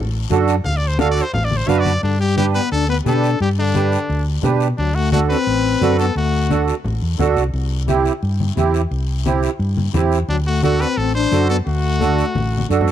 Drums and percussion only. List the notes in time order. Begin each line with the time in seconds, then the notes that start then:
0.30 high conga, short guiro
0.48 short guiro
0.64 low conga, long guiro
0.82 high conga
0.99 high conga, short guiro
1.17 short guiro
1.33 high conga, low conga, long guiro
1.51 high conga
1.68 high conga, short guiro
1.85 high conga, short guiro
2.03 long guiro
2.37 high conga, short guiro
2.54 short guiro
2.72 long guiro
3.06 high conga, short guiro
3.24 short guiro
3.40 long guiro
3.75 high conga, short guiro
3.92 short guiro
4.10 long guiro
4.43 high conga, low conga, short guiro
4.60 short guiro
4.78 long guiro
5.12 high conga, short guiro
5.31 short guiro
5.47 long guiro
5.82 high conga, short guiro
5.99 short guiro
6.16 long guiro
6.50 high conga, short guiro
6.68 short guiro
6.84 low conga, long guiro
7.19 high conga, low conga, short guiro
7.37 short guiro
7.54 long guiro
7.88 high conga, short guiro
8.06 short guiro
8.23 long guiro
8.40 high conga
8.57 high conga, short guiro
8.74 short guiro
8.92 long guiro
9.26 high conga, short guiro
9.43 short guiro
9.60 long guiro
9.77 high conga
9.94 high conga, low conga, short guiro
10.12 short guiro
10.29 long guiro
10.63 high conga, short guiro
10.80 short guiro
10.98 long guiro
11.32 high conga, short guiro
11.49 short guiro
11.67 long guiro
12.01 high conga, short guiro
12.19 short guiro
12.35 high conga, long guiro
12.58 high conga
12.71 short guiro
12.81 low conga
12.88 short guiro